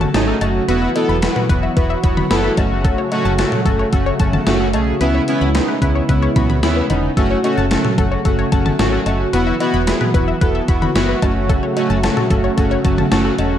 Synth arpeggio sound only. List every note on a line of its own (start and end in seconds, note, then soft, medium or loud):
0.01 0.09 A5 medium
0.14 0.23 A5 medium
0.28 0.36 A4 medium
0.41 0.50 A5 medium
0.68 0.77 B4 medium
0.82 0.90 E5 medium
1.09 1.17 B5 loud
1.22 1.31 B5 medium
1.36 1.44 B4 medium
1.50 1.58 B4 medium
1.63 1.71 E5 medium
1.77 1.85 B4 medium
1.90 1.98 E5 medium
2.04 2.12 B5 medium
2.17 2.25 B5 medium
2.31 2.39 B5 loud
2.44 2.52 B4 medium
2.58 2.66 A5 medium
2.85 2.93 A4 medium
2.98 3.07 C#5 medium
3.25 3.34 A5 loud
3.39 3.47 A5 medium
3.52 3.61 A4 medium
3.66 3.74 A4 medium
3.79 3.88 C#5 medium
3.93 4.01 A4 medium
4.06 4.15 C#5 medium
4.20 4.28 A5 medium
4.33 4.42 A5 medium
4.47 4.55 A5 medium
4.60 4.69 A4 medium
4.74 4.82 A5 medium
5.01 5.09 B4 medium
5.14 5.23 C#5 medium
5.41 5.50 B5 loud
5.55 5.63 B5 medium
5.68 5.77 B4 medium
5.82 5.90 B4 medium
5.95 6.04 C#5 medium
6.09 6.17 B4 medium
6.22 6.31 C#5 medium
6.36 6.44 B5 medium
6.50 6.58 B5 medium
6.63 6.71 B5 loud
6.77 6.85 B4 medium
6.90 6.98 B5 medium
7.17 7.25 A4 medium
7.31 7.39 C#5 medium
7.58 7.66 A5 loud
7.71 7.79 A5 medium
7.85 7.93 A4 medium
7.98 8.06 A4 medium
8.12 8.20 C#5 medium
8.25 8.33 A4 medium
8.39 8.47 C#5 medium
8.52 8.60 A5 medium
8.66 8.74 A5 medium
8.79 8.88 A5 loud
8.93 9.01 A4 medium
9.06 9.15 A5 medium
9.33 9.42 B4 medium
9.47 9.55 E5 medium
9.74 9.82 B5 loud
9.87 9.96 B5 medium
10.01 10.09 B4 medium
10.14 10.23 B4 medium
10.28 10.36 E5 medium
10.41 10.50 B4 medium
10.55 10.63 E5 medium
10.68 10.77 B5 medium
10.82 10.90 B5 medium
10.95 11.04 B5 loud
11.09 11.17 B4 medium
11.22 11.31 A5 medium
11.49 11.58 A4 medium
11.63 11.71 C#5 medium
11.90 11.98 A5 loud
12.04 12.12 A5 medium
12.17 12.25 A4 medium
12.30 12.39 A4 medium
12.44 12.52 C#5 medium
12.57 12.66 A4 medium
12.71 12.79 C#5 medium
12.85 12.93 A5 medium
12.98 13.06 A5 medium
13.12 13.20 A5 loud
13.25 13.33 A4 medium
13.39 13.47 A5 medium